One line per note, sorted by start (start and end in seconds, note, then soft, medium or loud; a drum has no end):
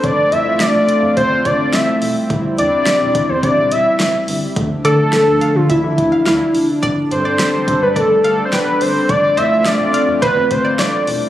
0.04 0.16 F1 loud
0.04 2.00 A3 medium
0.04 4.52 C4 medium
0.04 2.00 F4 loud
0.04 0.33 D5 loud
0.04 kick loud
0.04 closed hi-hat medium
0.32 0.45 F2 loud
0.32 0.62 E5 loud
0.32 closed hi-hat medium
0.60 1.16 D5 loud
0.60 snare loud
0.60 closed hi-hat medium
0.74 0.87 F1 loud
0.89 closed hi-hat medium
1.03 1.15 F2 loud
1.17 1.29 F1 loud
1.17 1.47 C5 loud
1.17 kick medium
1.17 closed hi-hat medium
1.31 1.44 F2 loud
1.45 1.58 F1 loud
1.45 1.75 D5 loud
1.45 kick medium
1.45 closed hi-hat medium
1.73 1.86 F1 loud
1.73 2.16 E5 loud
1.73 snare loud
1.73 closed hi-hat medium
2.02 2.14 E1 loud
2.02 4.54 G3 medium
2.02 4.54 E4 medium
2.02 open hi-hat medium
2.30 2.43 E1 loud
2.30 kick loud
2.30 closed hi-hat medium
2.58 2.71 E2 medium
2.58 3.31 D5 loud
2.58 closed hi-hat medium
2.86 snare loud
2.86 closed hi-hat medium
3.01 3.13 E1 medium
3.15 kick medium
3.15 closed hi-hat medium
3.29 3.42 E2 loud
3.29 3.45 C5 medium
3.43 3.73 D5 loud
3.43 kick medium
3.43 closed hi-hat medium
3.57 3.70 E1 loud
3.72 3.84 E1 medium
3.72 4.28 E5 loud
3.72 closed hi-hat medium
4.00 4.12 F1 loud
4.00 snare loud
4.00 closed hi-hat medium
4.28 4.41 G1 loud
4.28 open hi-hat medium
4.56 4.69 D2 loud
4.56 6.80 D3 medium
4.56 6.80 F3 medium
4.56 9.05 D4 medium
4.56 kick loud
4.56 closed hi-hat medium
4.85 4.97 D3 loud
4.85 5.57 A4 loud
4.85 4.95 D5 medium
4.85 closed hi-hat medium
5.13 snare loud
5.13 closed hi-hat medium
5.27 5.40 D2 medium
5.41 5.62 F5 medium
5.41 closed hi-hat medium
5.55 5.68 D3 loud
5.55 5.71 F4 loud
5.70 5.82 D2 loud
5.70 6.26 E4 loud
5.70 5.80 E5 loud
5.70 kick medium
5.70 closed hi-hat medium
5.84 5.96 D3 loud
5.98 6.11 D2 loud
5.98 kick medium
5.98 closed hi-hat medium
6.12 6.23 F5 medium
6.26 6.39 D2 loud
6.26 6.66 E4 medium
6.26 6.66 F5 medium
6.26 snare loud
6.26 closed hi-hat medium
6.55 6.67 F1 medium
6.55 open hi-hat medium
6.83 6.96 G1 loud
6.83 9.07 G3 medium
6.83 9.07 A4 medium
6.83 6.93 D5 loud
6.83 9.07 D5 loud
6.83 kick loud
6.83 closed hi-hat medium
7.11 7.24 G2 loud
7.11 7.84 C5 loud
7.11 closed hi-hat medium
7.25 7.65 D5 medium
7.39 snare loud
7.39 closed hi-hat medium
7.54 7.66 G1 medium
7.68 kick medium
7.68 closed hi-hat medium
7.82 7.95 G2 loud
7.82 7.98 B4 medium
7.96 8.24 A4 medium
7.96 8.17 D5 medium
7.96 kick medium
7.96 closed hi-hat medium
8.10 8.23 G1 loud
8.24 8.37 G1 loud
8.24 8.44 A4 medium
8.24 8.35 F5 medium
8.24 closed hi-hat medium
8.45 8.54 C5 medium
8.52 8.65 F1 loud
8.52 8.83 B4 loud
8.52 8.92 G5 medium
8.52 snare loud
8.52 closed hi-hat medium
8.81 8.94 G1 loud
8.81 9.11 C5 loud
8.81 open hi-hat medium
9.09 9.22 F1 loud
9.09 11.05 A3 medium
9.09 11.05 C4 medium
9.09 11.05 F4 medium
9.09 9.39 D5 loud
9.09 kick loud
9.09 closed hi-hat medium
9.37 9.50 F2 loud
9.37 9.48 C5 medium
9.37 9.67 E5 loud
9.37 closed hi-hat medium
9.65 10.22 D5 loud
9.65 snare loud
9.65 closed hi-hat medium
9.80 9.93 F1 loud
9.94 10.15 F5 medium
9.94 closed hi-hat medium
10.08 10.21 F2 loud
10.22 10.35 F1 loud
10.22 10.52 B4 loud
10.22 10.33 C5 loud
10.22 kick medium
10.22 closed hi-hat medium
10.37 10.49 F2 loud
10.51 10.63 F1 loud
10.51 10.81 C5 loud
10.51 kick medium
10.51 closed hi-hat medium
10.65 10.75 D5 medium
10.79 10.92 F1 loud
10.79 11.19 D5 medium
10.79 11.21 D5 medium
10.79 snare loud
10.79 closed hi-hat medium
11.07 11.20 E1 loud
11.07 11.29 G3 medium
11.07 11.29 C4 medium
11.07 11.29 E4 loud
11.07 open hi-hat medium